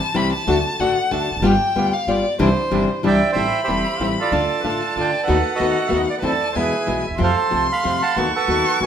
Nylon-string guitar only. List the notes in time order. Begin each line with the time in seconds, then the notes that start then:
0.14 C3 E3 G3 C4 E4
0.47 D3 A3 D4 F#4
0.80 D3 A3 D4 F#4
1.11 D3 A3 D4 F#4
1.42 G3 B3 F4
1.76 G3 B3 F4
2.08 G3 B3 F4
2.39 C3 E3 G3 D4 E4
2.71 C3 E3 G3 D4 E4
3.03 C3 E3 G3 D4 E4
3.35 E3 G3 C4 E4
3.68 E3 G3 C4 E4
4.00 E3 G3 C4 E4
4.32 D3 A3 D4 F4
4.63 D3 A3 D4 F4
4.97 D3 A3 D4 F4
5.27 D#3 A3 B3 F#4
5.59 D#3 A3 B3 F#4
5.89 D#3 A3 B3 F#4
6.22 E3 A3 C4 E4
6.56 B2 E3 G#3 B3 E4
6.86 B2 E3 G#3 B3 E4
7.18 C3 F3 A3 C4 F4
7.50 C3 F3 A3 C4 F4
7.83 C3 F3 A3 C4 F4
8.17 D#3 A3 B3 F#4
8.48 D#3 A3 B3 F#4
8.80 D#3 A3 B3 F#4